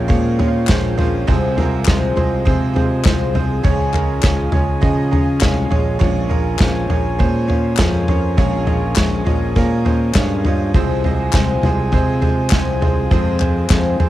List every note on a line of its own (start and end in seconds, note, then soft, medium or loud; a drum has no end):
0.00 1.24 A#1 medium
0.00 1.24 A#2 medium
0.00 0.08 F3 loud
0.00 0.08 A#3 loud
0.00 0.08 C#4 loud
0.00 0.10 C#4 medium
0.00 10.70 F4 medium
0.00 0.08 G#4 loud
0.00 1.24 A#4 medium
0.00 1.29 A#4 loud
0.00 0.68 C5 loud
0.00 0.08 C#5 loud
0.00 1.24 C#5 medium
0.00 1.25 G5 medium
0.08 0.66 A#2 loud
0.08 0.33 F3 loud
0.08 0.39 F3 medium
0.08 0.40 G#3 medium
0.08 0.33 A#3 loud
0.08 0.33 C#4 medium
0.08 0.33 G#4 loud
0.08 0.33 C#5 loud
0.08 kick loud
0.08 floor tom medium
0.12 0.39 C#4 medium
0.12 0.38 F4 medium
0.39 0.63 F3 medium
0.39 0.69 G#3 medium
0.39 0.63 A#3 medium
0.39 0.63 C#4 medium
0.39 0.69 C#4 medium
0.39 0.69 F4 medium
0.39 0.63 G#4 medium
0.39 0.63 C#5 medium
0.39 0.48 G#5 medium
0.39 floor tom medium
0.48 0.66 F5 medium
0.67 1.25 A#1 loud
0.67 0.98 A#2 medium
0.67 0.92 F3 loud
0.67 0.98 F3 loud
0.67 0.99 G#3 medium
0.67 0.92 A#3 medium
0.67 0.92 C#4 medium
0.67 0.99 C#4 medium
0.67 0.97 F4 loud
0.67 0.92 G#4 medium
0.67 0.92 C5 loud
0.67 1.23 F5 medium
0.67 kick loud
0.67 snare loud
0.67 clap loud
0.67 floor tom medium
0.97 1.22 F3 loud
0.97 1.27 G#3 medium
0.97 1.22 A#3 medium
0.97 1.22 C#4 medium
0.97 1.28 C#4 medium
0.97 1.28 F4 medium
0.97 1.22 G#4 medium
0.97 1.22 C5 loud
0.97 floor tom medium
1.27 3.60 C2 medium
1.27 1.84 C2 loud
1.27 1.57 C3 medium
1.27 3.60 C3 medium
1.27 1.51 F3 loud
1.27 1.57 F3 medium
1.27 1.51 G#3 loud
1.27 1.58 G#3 loud
1.27 1.51 C4 loud
1.27 1.57 C4 medium
1.27 1.56 F4 loud
1.27 1.51 G#4 loud
1.27 5.97 G#4 medium
1.27 3.62 C5 medium
1.27 1.51 C5 loud
1.27 10.69 G#5 medium
1.27 kick loud
1.27 floor tom medium
1.57 1.81 F3 medium
1.57 1.81 G#3 medium
1.57 1.86 G#3 medium
1.57 1.81 C4 medium
1.57 1.87 C4 medium
1.57 1.87 F4 medium
1.57 1.81 G#4 medium
1.57 1.81 A#4 loud
1.57 floor tom medium
1.85 2.16 C2 loud
1.85 2.16 C3 medium
1.85 2.11 F3 medium
1.85 2.17 F3 loud
1.85 2.17 G#3 loud
1.85 2.11 G#3 medium
1.85 2.11 C4 medium
1.85 2.16 C4 loud
1.85 2.14 F4 loud
1.85 2.11 G#4 medium
1.85 2.11 D#5 loud
1.85 kick loud
1.85 snare loud
1.85 clap loud
1.85 floor tom loud
2.16 2.44 C2 medium
2.16 2.40 F3 loud
2.16 2.41 G#3 medium
2.16 2.45 G#3 medium
2.16 2.40 C4 medium
2.16 2.47 C4 medium
2.16 2.46 F4 medium
2.16 2.41 G#4 medium
2.16 2.40 C5 loud
2.16 floor tom medium
2.45 3.03 C3 loud
2.45 2.75 F3 medium
2.45 2.70 F3 loud
2.45 2.70 G#3 medium
2.45 2.76 G#3 medium
2.45 2.70 C4 loud
2.45 2.74 C4 medium
2.45 2.72 F4 medium
2.45 2.70 G#4 medium
2.45 2.69 C5 loud
2.45 kick medium
2.45 floor tom medium
2.74 2.99 F3 medium
2.74 2.99 G#3 medium
2.74 3.03 G#3 medium
2.74 3.04 C4 medium
2.74 2.99 C4 medium
2.74 3.04 F4 medium
2.74 3.00 G#4 medium
2.74 2.99 C5 loud
2.74 floor tom medium
3.03 3.61 C2 loud
3.03 3.34 C3 loud
3.03 3.34 F3 medium
3.03 3.29 F3 medium
3.03 3.34 G#3 loud
3.03 3.29 G#3 medium
3.03 3.33 C4 medium
3.03 3.29 C4 medium
3.03 3.31 F4 loud
3.03 3.29 G#4 medium
3.03 3.29 C5 loud
3.03 kick loud
3.03 snare loud
3.03 clap medium
3.03 floor tom loud
3.33 3.59 F3 medium
3.33 3.63 G#3 medium
3.33 3.59 G#3 medium
3.33 3.64 C4 medium
3.33 3.59 C4 medium
3.33 3.63 F4 medium
3.33 3.59 G#4 medium
3.33 3.59 C5 loud
3.33 floor tom medium
3.63 5.97 C#2 medium
3.63 4.21 C#2 medium
3.63 3.93 C#3 medium
3.63 5.97 C#3 medium
3.63 3.88 F3 loud
3.63 3.94 F3 medium
3.63 3.88 G#3 loud
3.63 3.94 G#3 medium
3.63 3.88 C#4 loud
3.63 3.93 C#4 medium
3.63 3.91 F4 medium
3.63 3.88 G#4 loud
3.63 10.69 C#5 medium
3.63 3.88 C#5 loud
3.63 kick loud
3.63 floor tom medium
3.92 4.18 F3 medium
3.92 4.18 G#3 medium
3.92 4.21 G#3 soft
3.92 4.21 C#4 soft
3.92 4.18 C#4 medium
3.92 4.22 F4 medium
3.92 4.18 G#4 medium
3.92 4.18 A#4 loud
3.92 clap medium
3.92 floor tom medium
4.21 4.52 C#2 loud
4.21 4.52 C#3 medium
4.21 4.52 F3 medium
4.21 4.47 F3 medium
4.21 4.53 G#3 loud
4.21 4.47 G#3 medium
4.21 4.52 C#4 loud
4.21 4.47 C#4 medium
4.21 4.50 F4 medium
4.21 4.47 G#4 medium
4.21 4.47 C#5 loud
4.21 kick loud
4.21 snare loud
4.21 clap medium
4.21 floor tom medium
4.51 4.81 C#2 medium
4.51 4.77 F3 medium
4.51 4.77 G#3 medium
4.51 4.80 G#3 medium
4.51 4.76 C#4 medium
4.51 4.82 C#4 medium
4.51 4.82 F4 medium
4.51 4.77 G#4 medium
4.51 4.77 C#5 loud
4.51 floor tom loud
4.81 5.39 C#3 loud
4.81 5.11 F3 medium
4.81 5.06 F3 loud
4.81 5.12 G#3 medium
4.81 5.06 G#3 loud
4.81 5.06 C#4 medium
4.81 5.11 C#4 medium
4.81 5.10 F4 medium
4.81 5.06 G#4 loud
4.81 5.06 D#5 loud
4.81 kick loud
4.81 floor tom medium
5.11 5.36 F3 medium
5.11 5.36 G#3 medium
5.11 5.40 G#3 soft
5.11 5.36 C#4 medium
5.11 5.41 C#4 medium
5.11 5.41 F4 medium
5.11 5.36 G#4 medium
5.11 5.36 C#5 medium
5.11 5.26 A#5 medium
5.11 floor tom medium
5.25 5.40 G#5 medium
5.40 5.69 C2 medium
5.40 5.71 C#3 medium
5.40 5.65 F3 medium
5.40 5.71 F3 medium
5.40 5.65 G#3 medium
5.40 5.71 G#3 medium
5.40 5.65 C#4 medium
5.40 5.71 C#4 medium
5.40 5.70 F4 medium
5.40 5.65 G#4 medium
5.40 5.55 C#5 medium
5.40 5.55 F5 medium
5.40 kick loud
5.40 snare loud
5.40 clap medium
5.40 floor tom loud
5.57 5.69 C#5 medium
5.70 5.97 A#1 loud
5.70 5.94 F3 medium
5.70 5.95 G#3 medium
5.70 6.00 G#3 medium
5.70 5.95 C#4 medium
5.70 6.01 C#4 medium
5.70 6.01 F4 medium
5.70 5.95 G#4 medium
5.70 5.95 C#5 loud
5.70 floor tom medium
5.99 8.33 A#1 medium
5.99 6.57 A#1 loud
5.99 8.33 A#2 medium
5.99 6.30 A#2 medium
5.99 6.24 F3 loud
5.99 6.30 F3 medium
5.99 6.31 G#3 medium
5.99 6.24 A#3 loud
5.99 6.24 C#4 loud
5.99 6.30 C#4 medium
5.99 6.29 F4 medium
5.99 6.24 G#4 loud
5.99 10.70 A#4 medium
5.99 6.24 C#5 loud
5.99 kick loud
5.99 floor tom medium
6.29 6.54 F3 medium
6.29 6.60 G#3 soft
6.29 6.54 A#3 medium
6.29 6.54 C#4 medium
6.29 6.60 C#4 soft
6.29 6.60 F4 medium
6.29 6.54 G#4 medium
6.29 6.54 A#4 loud
6.29 floor tom medium
6.59 6.88 A#1 loud
6.59 6.90 A#2 loud
6.59 6.83 F3 medium
6.59 6.90 F3 loud
6.59 6.90 G#3 loud
6.59 6.83 A#3 medium
6.59 6.84 C#4 medium
6.59 6.90 C#4 loud
6.59 6.88 F4 medium
6.59 6.83 G#4 medium
6.59 6.84 C5 loud
6.59 kick loud
6.59 snare loud
6.59 clap medium
6.59 floor tom loud
6.89 7.18 A#1 medium
6.89 7.13 F3 medium
6.89 7.19 G#3 medium
6.89 7.14 A#3 medium
6.89 7.13 C#4 medium
6.89 7.20 C#4 medium
6.89 7.19 F4 medium
6.89 7.14 G#4 medium
6.89 7.13 C#5 loud
6.89 floor tom loud
7.19 7.75 A#2 loud
7.19 7.43 F3 loud
7.19 7.49 F3 medium
7.19 7.49 G#3 medium
7.19 7.43 A#3 loud
7.19 7.43 C#4 medium
7.19 7.49 C#4 medium
7.19 7.47 F4 medium
7.19 7.43 G#4 loud
7.19 7.43 C5 loud
7.19 kick loud
7.19 floor tom medium
7.47 7.72 F3 medium
7.47 7.72 A#3 medium
7.47 7.72 C#4 medium
7.47 7.79 C#4 medium
7.47 7.78 F4 medium
7.47 7.72 G#4 medium
7.47 7.72 C#5 medium
7.47 floor tom medium
7.51 7.79 G#3 medium
7.77 8.35 F2 loud
7.77 8.08 A#2 medium
7.77 8.02 F3 medium
7.77 8.09 F3 medium
7.77 8.09 G#3 medium
7.77 8.02 A#3 medium
7.77 8.02 C#4 medium
7.77 8.09 C#4 medium
7.77 8.02 G#4 medium
7.77 8.02 C#5 loud
7.77 kick loud
7.77 snare loud
7.77 clap loud
7.77 floor tom loud
7.81 8.07 F4 medium
8.08 8.32 F3 medium
8.08 8.38 G#3 medium
8.08 8.32 A#3 medium
8.08 8.32 C#4 medium
8.08 8.38 C#4 medium
8.08 8.38 F4 medium
8.08 8.32 G#4 medium
8.08 8.32 C#5 loud
8.08 floor tom loud
8.37 10.70 A#1 medium
8.37 8.94 A#1 loud
8.37 10.70 A#2 medium
8.37 8.67 A#2 medium
8.37 8.61 F3 loud
8.37 8.68 F3 medium
8.37 8.68 G#3 medium
8.37 8.61 A#3 loud
8.37 8.61 C#4 loud
8.37 8.67 C#4 medium
8.37 8.66 F4 medium
8.37 8.61 G#4 loud
8.37 8.61 C#5 loud
8.37 kick loud
8.37 floor tom medium
8.66 8.91 F3 medium
8.66 8.97 G#3 medium
8.66 8.90 A#3 medium
8.66 8.91 C#4 medium
8.66 8.97 C#4 medium
8.66 8.96 F4 medium
8.66 8.90 G#4 medium
8.66 8.90 D#5 medium
8.66 floor tom medium
8.96 9.25 A#1 loud
8.96 9.26 A#2 medium
8.96 9.20 F3 medium
8.96 9.27 F3 medium
8.96 9.27 G#3 loud
8.96 9.20 A#3 medium
8.96 9.20 C#4 medium
8.96 9.27 C#4 loud
8.96 9.25 F4 loud
8.96 9.20 G#4 medium
8.96 9.20 C#5 loud
8.96 kick loud
8.96 snare loud
8.96 clap loud
8.96 floor tom loud
9.25 9.54 A#1 medium
9.25 9.49 F3 medium
9.25 9.50 A#3 medium
9.25 9.50 C#4 medium
9.25 9.56 C#4 medium
9.25 9.56 F4 medium
9.25 9.49 G#4 medium
9.25 9.50 D#5 loud
9.25 floor tom medium
9.29 9.55 G#3 medium
9.55 10.12 A#2 loud
9.55 9.85 F3 medium
9.55 9.80 F3 loud
9.55 9.86 G#3 medium
9.55 9.79 A#3 loud
9.55 9.79 C#4 loud
9.55 9.86 C#4 medium
9.55 9.84 F4 medium
9.55 9.80 G#4 loud
9.55 9.80 A#4 loud
9.55 kick medium
9.55 floor tom medium
9.85 10.09 F3 medium
9.85 10.14 G#3 soft
9.85 10.09 A#3 medium
9.85 10.09 C#4 medium
9.85 10.15 C#4 medium
9.85 10.15 F4 medium
9.85 10.09 G#4 medium
9.85 10.09 C5 medium
9.85 10.13 G#5 medium
9.85 floor tom medium
10.14 10.71 G2 loud
10.14 10.44 A#2 medium
10.14 10.44 F3 medium
10.14 10.39 F3 medium
10.14 10.45 G#3 medium
10.14 10.39 A#3 medium
10.14 10.45 C#4 loud
10.14 10.39 C#4 medium
10.14 10.43 F4 loud
10.14 10.39 G#4 medium
10.14 10.39 C#5 loud
10.14 10.43 F5 medium
10.14 kick loud
10.14 snare loud
10.14 clap loud
10.14 floor tom medium
10.44 10.69 F3 loud
10.44 10.74 G#3 medium
10.44 10.69 A#3 medium
10.44 10.75 C#4 medium
10.44 10.69 C#4 medium
10.44 10.74 F4 medium
10.44 10.69 G#4 medium
10.44 10.69 C#5 loud
10.44 10.73 D#5 medium
10.44 floor tom loud
10.73 11.30 C2 loud
10.73 13.07 C2 medium
10.73 11.04 C3 medium
10.73 13.08 C3 medium
10.73 11.04 F3 medium
10.73 10.98 F3 loud
10.73 11.04 G#3 medium
10.73 10.98 G#3 loud
10.73 10.98 C4 loud
10.73 11.04 C4 medium
10.73 14.09 F4 medium
10.73 11.03 F4 medium
10.73 14.09 G#4 medium
10.73 10.99 G#4 loud
10.73 13.08 C5 medium
10.73 10.98 C5 loud
10.73 14.09 G#5 medium
10.73 kick loud
10.73 floor tom medium
11.04 11.28 F3 loud
11.04 11.28 G#3 medium
11.04 11.33 G#3 medium
11.04 11.28 C4 medium
11.04 11.34 C4 medium
11.04 11.33 F4 medium
11.04 11.28 G#4 medium
11.04 11.28 D#5 loud
11.04 floor tom medium
11.33 11.61 C2 loud
11.33 11.63 C3 medium
11.33 11.57 F3 medium
11.33 11.63 F3 loud
11.33 11.57 G#3 medium
11.33 11.63 G#3 loud
11.33 11.57 C4 medium
11.33 11.62 C4 medium
11.33 11.61 F4 loud
11.33 11.57 G#4 medium
11.33 11.57 C5 loud
11.33 kick loud
11.33 snare loud
11.33 clap medium
11.33 floor tom loud
11.62 11.90 C2 loud
11.62 11.87 F3 loud
11.62 11.87 G#3 medium
11.62 11.92 G#3 medium
11.62 11.93 C4 medium
11.62 11.88 C4 medium
11.62 11.92 F4 medium
11.62 11.87 G#4 medium
11.62 11.87 C5 loud
11.62 floor tom loud
11.92 12.49 C3 loud
11.92 12.21 F3 medium
11.92 12.16 F3 loud
11.92 12.16 G#3 loud
11.92 12.22 G#3 medium
11.92 12.17 C4 loud
11.92 12.23 C4 medium
11.92 12.21 F4 medium
11.92 12.16 G#4 loud
11.92 12.16 C5 loud
11.92 kick loud
11.92 floor tom medium
12.21 12.46 F3 loud
12.21 12.46 G#3 medium
12.21 12.51 G#3 medium
12.21 12.45 C4 medium
12.21 12.52 C4 medium
12.21 12.51 F4 medium
12.21 12.45 G#4 medium
12.21 12.45 C5 loud
12.21 floor tom medium
12.50 13.08 C2 loud
12.50 12.81 C3 medium
12.50 12.75 F3 medium
12.50 12.81 F3 loud
12.50 12.75 G#3 medium
12.50 12.82 G#3 loud
12.50 12.75 C4 medium
12.50 12.81 C4 loud
12.50 12.80 F4 loud
12.50 12.75 G#4 medium
12.50 12.75 C5 loud
12.50 kick loud
12.50 snare loud
12.50 clap loud
12.50 floor tom medium
12.81 13.05 F3 loud
12.81 13.05 G#3 medium
12.81 13.11 G#3 medium
12.81 13.05 C4 medium
12.81 13.11 C4 medium
12.81 13.10 F4 medium
12.81 13.05 G#4 medium
12.81 13.05 C5 loud
12.81 floor tom medium
13.11 14.09 F1 medium
13.11 13.40 F2 medium
13.11 14.09 F2 medium
13.11 13.67 F2 loud
13.11 13.40 C3 medium
13.11 13.35 F3 loud
13.11 13.41 F3 medium
13.11 13.34 G#3 loud
13.11 13.41 G#3 loud
13.11 13.34 C4 loud
13.11 13.40 C4 medium
13.11 13.38 F4 medium
13.11 13.35 G#4 loud
13.11 14.09 C5 medium
13.11 13.35 C5 loud
13.11 kick loud
13.11 floor tom medium
13.40 13.64 F3 medium
13.40 13.69 F3 soft
13.40 13.64 G#3 medium
13.40 13.70 G#3 medium
13.40 13.64 C4 medium
13.40 13.70 C4 medium
13.40 13.69 F4 medium
13.40 13.64 G#4 medium
13.40 13.64 C5 medium
13.40 clap medium
13.40 floor tom medium
13.69 13.99 F2 medium
13.69 13.98 F2 loud
13.69 14.00 C3 loud
13.69 13.93 F3 medium
13.69 14.00 F3 medium
13.69 13.94 G#3 medium
13.69 14.00 G#3 loud
13.69 13.94 C4 medium
13.69 13.99 C4 loud
13.69 13.98 F4 loud
13.69 13.94 G#4 medium
13.69 13.93 C5 medium
13.69 kick loud
13.69 snare loud
13.69 clap loud
13.69 floor tom medium
14.00 14.09 F2 medium
14.00 14.09 F3 medium
14.00 14.09 G#3 medium
14.00 14.09 C4 medium
14.00 14.09 F4 medium
14.00 14.09 G#4 medium
14.00 14.09 C5 loud
14.00 floor tom loud